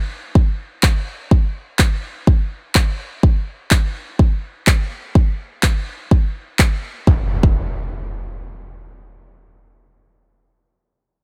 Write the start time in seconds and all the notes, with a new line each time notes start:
0.35 kick
0.83 kick, clap
1.31 kick
1.79 kick, clap
2.27 kick
2.75 kick, clap
3.23 kick
3.71 kick, clap
4.19 kick
4.67 kick, clap
5.15 kick
5.63 kick, clap
6.11 kick
6.59 kick, clap
7.07 kick, impact
7.43 kick